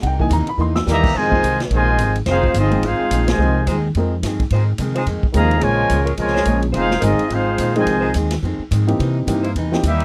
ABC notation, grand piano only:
X:1
M:4/4
L:1/8
Q:"Swing" 1/4=214
K:Fm
V:1 name="Grand piano"
[_g=g] [=E,B,^Da] b =b [E,_B,Dc'] =e' z2 | z [F,A,CEA] z6 | z3 [F,A,CEA] z4 | [F,A,CEA] z3 [F,A,CEB] z3 |
z6 [F,A,CEA]2 | z6 [F,A,B,DA] z | z6 z [F,A,CEA]- | [F,A,CEA]2 z4 z [=E,B,C_EG]- |
[=E,B,C_EG]2 [=E,B,C^DG] z2 [E,B,CDG] z2 |]